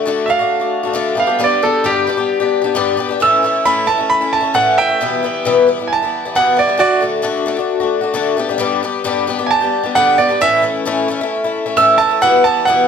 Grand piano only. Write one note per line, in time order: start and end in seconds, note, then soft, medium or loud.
0.26 0.29 E5 medium
0.26 1.16 F5 medium
1.20 1.41 F5 medium
1.44 1.64 D5 medium
1.63 1.85 A4 medium
1.86 2.73 G4 medium
3.22 3.65 E6 loud
3.65 3.87 B5 medium
3.87 4.09 A5 medium
4.10 4.31 B5 medium
4.33 4.54 A5 medium
4.55 4.76 F#5 medium
4.78 5.63 E5 medium
4.78 5.65 G5 loud
5.87 5.90 G#5 medium
5.93 6.34 A5 medium
6.36 6.57 F#5 medium
6.59 6.78 D5 medium
6.79 7.00 F#4 medium
6.79 7.01 D5 loud
9.47 9.49 G#5 medium
9.51 9.93 A5 medium
9.95 10.16 F#5 medium
10.18 10.39 D5 medium
10.42 10.62 E5 loud
11.77 11.98 E6 loud
11.98 12.19 A5 medium
12.22 12.43 F#5 loud
12.44 12.65 A5 loud
12.65 12.87 F#5 medium